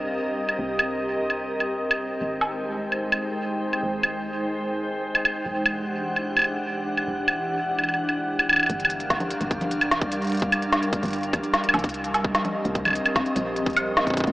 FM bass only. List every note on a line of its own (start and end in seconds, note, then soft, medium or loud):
0.00 0.57 C2 medium
0.59 2.19 C2 medium
2.21 3.81 G#1 medium
3.83 5.43 G#1 medium
5.45 7.06 E1 medium
7.07 8.68 E1 medium
8.70 9.35 G1 loud
9.41 9.83 G1 loud
9.81 10.97 C2 medium
11.03 11.37 G1 loud
11.74 12.39 C2 medium
12.65 12.99 C2 loud
13.36 14.11 A#1 loud
14.27 14.32 C2 loud